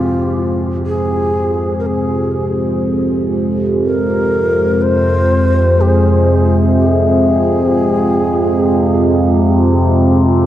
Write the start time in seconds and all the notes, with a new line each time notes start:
Already playing: F2 C3 F3 G#3 C4 F4 C5
0.87 G#4
1.79 A#4
1.86 G#4
3.85 A#4
4.82 C5
5.81 G#4
6.77 G4
6.88 G#4